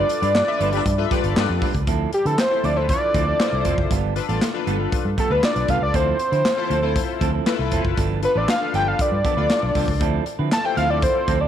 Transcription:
Already playing: F4 A4 B4 D5
0.09 muted clean electric guitar stroke, closed hi-hat
0.22 G2 G3 D4 F4 B4, closed hi-hat
0.34 D4 G4 B4 D5, muted clean electric guitar stroke, snare, clap
0.47 F4 A4 B4 E5, muted clean electric guitar stroke
0.60 G1 G3 D4 F4 B4, closed hi-hat
0.72 G3 D4 F4 G4 B4 D5, closed hi-hat
0.85 G2, muted clean electric guitar stroke, kick, closed hi-hat
0.98 F4 A4 B4 E5, muted clean electric guitar stroke
1.11 G3 D4 F4 G4 A4 B4 D5, kick, closed hi-hat
1.23 G1 G3 D4 F4 D5, closed hi-hat
1.36 G2 D4 G4 B4 D5, snare, clap
1.49 F2, muted clean electric guitar stroke
1.62 G3 D4 F4 B4, kick, open hi-hat
1.74 C#2, muted clean electric guitar stroke, kick, closed hi-hat
1.87 D2 F3 C4 E4 A4, kick, closed hi-hat
2.13 G4, muted clean electric guitar stroke, closed hi-hat
2.25 D3 F3 C4 E4 A4 B4, closed hi-hat
2.38 C5, snare, clap, closed hi-hat
2.50 E4 F4 A4 C5, muted clean electric guitar stroke
2.63 D2 F3 C4 E4 A4 D5, closed hi-hat
2.76 F3 C4 E4 F4 A4 B4 C5
2.89 D5, muted clean electric guitar stroke, kick, closed hi-hat
3.02 muted clean electric guitar stroke
3.14 D2 F3 C4 E4 A4, kick, closed hi-hat
3.27 F3 C4 E4 A4
3.39 E4 F4 A4 C5, snare, clap, closed hi-hat
3.52 C2, muted clean electric guitar stroke
3.65 F1 F3 C4 E4 A4, kick, closed hi-hat
3.78 F#1, muted clean electric guitar stroke, kick
3.90 G1 G3 B3 F4 A4, kick, closed hi-hat
4.16 D4 F4 A4 B4, muted clean electric guitar stroke, closed hi-hat
4.28 A1 G3 B3 D4 F4 A4 D5, closed hi-hat
4.42 snare, clap, closed hi-hat
4.54 D4 F4 A4 B4, muted clean electric guitar stroke
4.67 G1 G3 B3 F4 A4, closed hi-hat
4.79 G3 B3 F4 A4
4.92 muted clean electric guitar stroke, muted fingered electric bass stroke, kick, closed hi-hat
5.05 G2, muted clean electric guitar stroke
5.17 G3 B3 F4 A4, kick, closed hi-hat
5.30 D2 G3 B3 D4 F4 A4 B4
5.43 D5, muted clean electric guitar stroke, snare, clap, closed hi-hat
5.56 B1, muted clean electric guitar stroke, closed hi-hat
5.68 C2 G3 B3 F4 A4 F5, kick, closed hi-hat
5.81 C#2 D5, muted clean electric guitar stroke
5.94 D2 F3 C4 E4 A4 C5, kick, closed hi-hat
6.19 muted clean electric guitar stroke, closed hi-hat
6.32 D3 F3 C4 E4 B4, closed hi-hat
6.45 snare, clap, closed hi-hat
6.57 E4 F4 A4 C5, muted clean electric guitar stroke
6.70 D2 F3 C4 E4 A4, closed hi-hat
6.82 F3 C4 E4 F4 A4 C5
6.96 kick, closed hi-hat
7.08 muted clean electric guitar stroke
7.21 D2 F3 C4 E4 A4, kick, closed hi-hat
7.33 F3 C4 E4 A4
7.46 E4 F4 A4 B4, snare, clap, closed hi-hat
7.59 C2, muted clean electric guitar stroke
7.72 F1 F3 C4 E4 A4, kick, closed hi-hat
7.84 F#1, muted clean electric guitar stroke, kick
7.97 G1 F3 B3 D4 A4, kick, closed hi-hat
8.23 D4 F4 A4 B4, muted clean electric guitar stroke, closed hi-hat
8.35 A1 F3 B3 D4 F4 A4 B4 D5
8.48 F5, snare, clap, closed hi-hat
8.61 D4 F4 A4 B4, muted clean electric guitar stroke
8.73 G1 F3 B3 D4 A4 G5, closed hi-hat
8.86 F3 B3 D4 A4 F5
8.99 D5, muted fingered electric bass stroke, kick, closed hi-hat
9.12 G2, muted clean electric guitar stroke
9.24 F3 B3 D4 A4, kick, closed hi-hat
9.37 D2 F3 B3 D4 F4 A4 B4 D5
9.50 snare, clap, closed hi-hat
9.62 B1, muted clean electric guitar stroke
9.75 C2 F3 B3 D4 A4, kick, open hi-hat
9.88 C#2, muted clean electric guitar stroke, kick
10.01 D2 F3 C4 E4 A4, kick, closed hi-hat
10.26 muted clean electric guitar stroke, closed hi-hat
10.39 D3 F3 C4 E4 B4
10.52 A5, muted clean electric guitar stroke, snare, clap, closed hi-hat
10.64 E4 F4 A4 C5 G5, muted clean electric guitar stroke
10.77 D2 F3 C4 E4 A4 F5, closed hi-hat
10.89 F3 C4 E4 F4 A4 D5
11.02 C5, kick, closed hi-hat
11.15 muted clean electric guitar stroke
11.28 D2 F3 C4 E4 A4, kick, closed hi-hat
11.40 F3 C4 E4 A4 D5

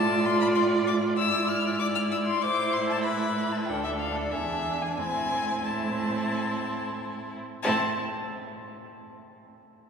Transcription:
Already playing: A2 F4 D5 A5
0.25 C6
0.41 B5
0.55 C6
0.87 D6
1.17 G#2 E4 D5 E6
1.49 F6
1.79 E4 D5 D6
1.95 F6
2.12 E6
2.27 C6
2.42 A2 E4 C5 D6
2.73 C6
2.90 A5
3.04 B4 B5
3.52 A5
3.66 D2 D4 A4 G5
3.84 E5
3.99 F5
4.16 D5
4.32 E2 D4 G#4 E5
4.82 G#5
4.98 A2 C4 E4 G#5
5.64 C4 E4 A5
7.63 A2 C4 E4 A5

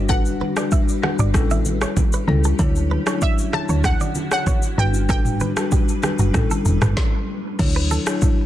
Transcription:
Already playing: G1 G3 D4 F#4 B4
0.09 G3 D4 F#4 A4 B4 F#5, kick, low conga, shaker
0.25 shaker
0.41 B4, high conga
0.56 G3 D4 F#4 B4 D5, cross-stick, shaker
0.71 E5, kick, shaker
0.89 shaker
1.02 G3 D4 F#4 B4 F#5, cross-stick, high conga
1.19 G1 D5, shaker
1.34 A1 G3 A3 C#4 E4 G4 A4, kick, cross-stick, low conga, shaker
1.51 E5, high conga, shaker
1.65 high conga, shaker
1.81 C#5, cross-stick, shaker
1.97 kick, high conga, low conga, shaker
2.13 B4, shaker
2.27 C#2 G3 C#4 E4 A4, high conga
2.44 A4, shaker
2.59 D2 D3 F#3 D4 E4 F#4 A4 C#5, kick, low conga, shaker
2.76 shaker
2.91 B4, high conga
3.06 F#3 D4 E4 C#5, cross-stick, shaker
3.22 D5 E5, kick, shaker
3.38 shaker
3.53 F#3 D4 E4 C#5 E5 A5, cross-stick, high conga
3.69 D2 C#5, shaker
3.84 F#5, kick, cross-stick, low conga, shaker
4.00 D5, high conga, shaker
4.15 high conga, shaker
4.31 C#5 F#5, cross-stick, shaker
4.46 C#5, kick, high conga, low conga, shaker
4.62 shaker
4.78 G1 F#3 G3 D4 F#4 B4 G5, high conga
4.94 shaker
5.09 G3 D4 F#4 A4 B4 G5, kick, low conga, shaker
5.25 mid tom, shaker
5.40 B4, high conga, shaker
5.56 G3 D4 F#4 A4 B4, cross-stick, shaker
5.72 G4, kick, low conga, shaker
5.89 shaker
6.03 G3 D4 F#4 G4 B4, cross-stick, high conga, shaker
6.19 F#1 F#4, shaker
6.34 A1 G3 C#4 E4 A4, kick, cross-stick, low conga, shaker
6.51 A4, high conga, shaker
6.65 E1, high conga, shaker
6.82 G1 B4, cross-stick, mid tom, shaker
6.97 kick, snare
7.59 D2 C#3 D3 F#3 D4 E4 F#4 C#5, kick, crash, low conga, shaker
7.76 B4
7.91 A4, high conga, shaker
8.06 F#3 D4 E4 C#5, cross-stick, shaker
8.22 kick, low conga, shaker

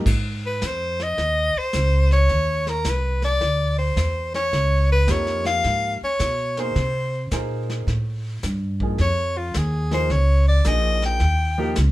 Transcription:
0.06 G#2, brush sweep, kick, snare, crash
0.46 B4
0.61 F2, snare, hi-hat pedal
0.66 C5
1.00 D#5, snare
1.18 D#2, brush sweep, snare
1.56 C5, muted upright bass stroke
1.73 C#2, snare, hi-hat pedal
2.11 C#5, snare
2.29 D#2, brush sweep, snare
2.67 A#4, snare
2.84 C2, snare, hi-hat pedal
2.89 B4
3.22 D5, snare
3.41 D2, brush sweep, snare
3.79 C5
3.96 E2, snare, hi-hat pedal
4.34 C#5, snare
4.51 C#2, brush sweep, snare
4.92 B4
5.07 F2 F3 A#3 D#4 G4, snare, hi-hat pedal
5.11 C#5
5.27 snare
5.45 F5, snare
5.64 G#2, brush sweep, snare
6.02 C#5, muted upright bass stroke
6.19 B2, snare, hi-hat pedal
6.57 A#3 D#4 G#4 C5, snare
6.75 C3, brush sweep, snare
7.31 A#2 A#3 D#4 G#4 C5, snare, hi-hat pedal
7.70 snare
7.87 A2, brush sweep, snare
8.43 G2, snare, hi-hat pedal
8.80 F3 A#3 D#4 G#4, kick
8.98 F2 C#5, brush sweep, snare
9.38 F4
9.54 D#2, snare, hi-hat pedal
9.58 G#4
9.91 F3 A#3 D#4 G#4 C5, snare
10.10 C#2 C#5, brush sweep, snare
10.48 D5
10.64 A#1 F3 A#3 D#4 G#4 D#5, snare, hi-hat pedal
11.02 G5, snare
11.20 D#2, brush sweep, snare
11.58 F3 A#3 D#4 G4
11.75 C#2, snare, hi-hat pedal

